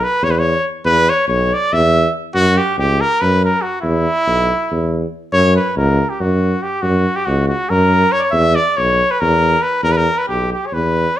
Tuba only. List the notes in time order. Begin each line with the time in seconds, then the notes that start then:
0.22 E2
0.85 E2
1.28 B1
1.73 E2
2.35 F#2
2.78 C#2
3.22 F#2
3.83 E2
4.27 B1
4.71 E2
5.33 F#2
5.76 C#2
6.20 F#2
6.83 F#2
7.27 C#2
7.70 F#2
8.33 E2
8.78 B1
9.22 E2
9.83 E2
10.29 B1
10.72 E2